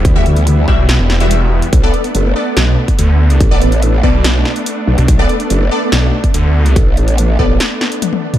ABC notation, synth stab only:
X:1
M:4/4
L:1/16
Q:1/4=143
K:Bphr
V:1 name="Synth stab"
z [G,Fe] z4 [G,Fe] z4 [G,Fe]4- [G,Fe] | z [B,Ad] z4 [B,Ad] z8 z | z [B,Ad] z4 [B,Ad] z8 z | z [B,Ad] z4 [B,Ad] z8 z |
z6 [B,Ad] z8 z |]